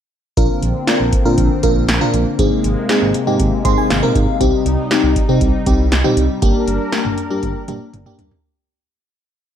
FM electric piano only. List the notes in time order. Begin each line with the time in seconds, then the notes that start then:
0.37 D4 F4 A#4
0.88 D4 F4 A#4
1.25 D4 F4 A#4
1.63 D4 F4 A#4
2.01 D4 F4 A#4
2.39 C4 D#4 G#4
2.89 C4 D#4 G#4
3.27 C4 D#4 G4
3.65 C4 D#4 G#4 C6
3.78 G#5
3.90 F5
4.03 C4 D#4 A#4
4.41 C4 D#4 G4
4.91 C4 D#4 G4
5.29 C4 D#4 G4
5.67 C4 D#4 G4
6.04 C4 D#4 G4
6.42 A#3 D4 G4
6.93 A#3 D4 G4
7.30 A#3 D4 G4
7.68 A#3 D4 G4
8.06 A#3 D4 G4